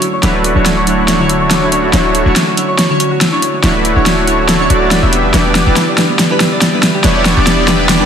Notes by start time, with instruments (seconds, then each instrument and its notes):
Already playing: analog synth pad D3 A3 E4 F#4 C#5, harp C#4 F#4
0.02 harp E4, closed hi-hat
0.13 harp C#5
0.22 808-style bass D1, synth keys F#3 D4 E4 C#5, supersaw synth A3 D4 E4 F#4 B4, harp D4, snare, closed hi-hat
0.34 harp C#4
0.44 harp C#4, closed hi-hat
0.55 808-style bass D1, synth keys F#3 D4 E4 C#5, supersaw synth A3 D4 E4 F#4 C#5, harp F#4
0.65 harp E4, snare, closed hi-hat
0.77 harp C#5
0.86 synth keys F#3 D4 E4 C#5, harp D4, closed hi-hat
0.98 harp C#4
1.08 harp C#4, snare, closed hi-hat
1.19 synth keys D3 F#3 E4 C#5, harp F#4
1.29 harp E4, closed hi-hat
1.41 harp C#5
1.51 harp D4, snare, closed hi-hat
1.61 synth keys F#3 D4 E4 C#5, harp C#4
1.72 harp C#4, closed hi-hat
1.83 harp F#4
1.92 808-style bass D1, synth keys F#3 D4 E4 C#5, supersaw synth A3 D4 E4 F#4 C#5, harp E4, snare, closed hi-hat
2.05 harp C#5
2.14 harp D4, closed hi-hat
2.25 808-style bass D1, synth keys F#3 D4 E4 C#5, supersaw synth A3 D4 E4 F#4 C#5, harp C#4
2.36 harp C#4, snare, closed hi-hat
2.47 harp F#4
2.56 synth keys F#3 D4 E4 C#5, harp E4, closed hi-hat
2.68 harp C#5
2.78 harp D4, snare, closed hi-hat
2.89 synth keys D3 F#3 E4 C#5, harp C#4
2.99 harp C#4, closed hi-hat
3.11 harp F#4
3.21 harp E4, snare, closed hi-hat
3.32 synth keys F#3 D4 E4 C#5, harp C#5
3.42 harp D4, closed hi-hat
3.53 harp C#4
3.63 808-style bass D1, synth keys F#3 D4 E4 C#5, supersaw synth A3 D4 E4 F#4 B4, harp C#4, snare, closed hi-hat
3.75 harp F#4
3.85 harp E4, closed hi-hat
3.96 808-style bass D1, synth keys F#3 D4 E4 C#5, supersaw synth A3 D4 E4 F#4 C#5, harp C#5
4.06 harp D4, snare, closed hi-hat
4.17 harp C#4
4.27 synth keys F#3 D4 E4 C#5, harp C#4, closed hi-hat
4.39 harp F#4
4.48 harp E4, snare, closed hi-hat
4.59 synth keys F#3 D4 E4 C#5, harp C#5
4.70 808-style bass D1, supersaw synth A3 D4 E4 F#4 D5, harp D5, closed hi-hat
4.81 harp C#4
4.90 synth keys G3 D4 E4 B4, harp D4, snare, closed hi-hat
5.02 808-style bass E1, supersaw synth B3 D4 E4 G4 E5, harp C#4
5.12 analog synth pad G3 B3 G4, harp B3, closed hi-hat
5.24 harp B4
5.33 808-style bass E1, synth keys G3 D4 E4 B4, supersaw synth B3 D4 E4 G4 D5, harp D4, snare, closed hi-hat
5.45 harp B3
5.55 harp B3, snare, closed hi-hat
5.66 808-style bass E1, synth keys G3 D4 E4 B4, supersaw synth B3 D4 E4 G4 D5, harp G4
5.76 harp E4, snare, closed hi-hat
5.88 harp D5
5.97 synth keys G3 D4 E4 B4, harp D4, snare, closed hi-hat
6.09 harp B3
6.19 harp B3, snare, closed hi-hat
6.30 synth keys G3 D4 E4 B4, harp G4
6.40 harp E4, snare, closed hi-hat
6.52 harp D5
6.62 harp D4, snare, closed hi-hat
6.72 synth keys G3 D4 E4 B4, harp B3
6.83 harp B3, snare, closed hi-hat
6.94 harp G4
7.03 808-style bass E1, synth keys G3 D4 E4 B4, supersaw synth B3 D4 E4 G4 C#5, harp E4, snare, closed hi-hat
7.16 harp D5
7.25 harp D4, snare, closed hi-hat
7.36 808-style bass E1, synth keys G3 D4 E4 B4, supersaw synth B3 D4 E4 G4 D5, harp B3
7.47 harp B3, snare, closed hi-hat
7.58 harp G4
7.67 synth keys G3 D4 E4 B4, harp E4, snare, closed hi-hat
7.79 harp D5
7.89 harp D4, snare, closed hi-hat
8.00 synth keys G3 D4 E4 B4, harp B3